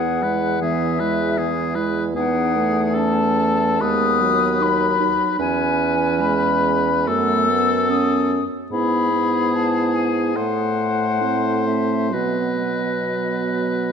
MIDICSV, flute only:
0, 0, Header, 1, 2, 480
1, 0, Start_track
1, 0, Key_signature, 4, "major"
1, 0, Tempo, 777202
1, 1335, Time_signature, 4, 2, 24, 8
1, 1829, Tempo, 853485
1, 2309, Tempo, 797872
1, 3749, Tempo, 874636
1, 4229, Tempo, 820793
1, 6149, Tempo, 862069
1, 6629, Tempo, 916031
1, 7109, Tempo, 970874
1, 7987, End_track
2, 0, Start_track
2, 0, Title_t, "Flute"
2, 0, Program_c, 0, 73
2, 0, Note_on_c, 0, 78, 73
2, 386, Note_on_c, 0, 76, 78
2, 395, Note_off_c, 0, 78, 0
2, 1094, Note_off_c, 0, 76, 0
2, 1339, Note_on_c, 0, 78, 73
2, 1834, Note_on_c, 0, 81, 77
2, 1842, Note_off_c, 0, 78, 0
2, 2304, Note_on_c, 0, 87, 89
2, 2313, Note_off_c, 0, 81, 0
2, 2792, Note_on_c, 0, 83, 81
2, 2801, Note_off_c, 0, 87, 0
2, 3259, Note_off_c, 0, 83, 0
2, 3263, Note_on_c, 0, 80, 79
2, 3745, Note_on_c, 0, 83, 77
2, 3753, Note_off_c, 0, 80, 0
2, 4225, Note_on_c, 0, 88, 90
2, 4234, Note_off_c, 0, 83, 0
2, 4705, Note_on_c, 0, 87, 68
2, 4714, Note_off_c, 0, 88, 0
2, 5022, Note_off_c, 0, 87, 0
2, 5180, Note_on_c, 0, 83, 68
2, 5669, Note_on_c, 0, 81, 69
2, 5678, Note_off_c, 0, 83, 0
2, 5903, Note_on_c, 0, 80, 58
2, 5911, Note_off_c, 0, 81, 0
2, 6144, Note_on_c, 0, 78, 68
2, 6152, Note_off_c, 0, 80, 0
2, 6858, Note_on_c, 0, 76, 51
2, 6866, Note_off_c, 0, 78, 0
2, 7088, Note_off_c, 0, 76, 0
2, 7092, Note_on_c, 0, 75, 56
2, 7987, Note_off_c, 0, 75, 0
2, 7987, End_track
0, 0, End_of_file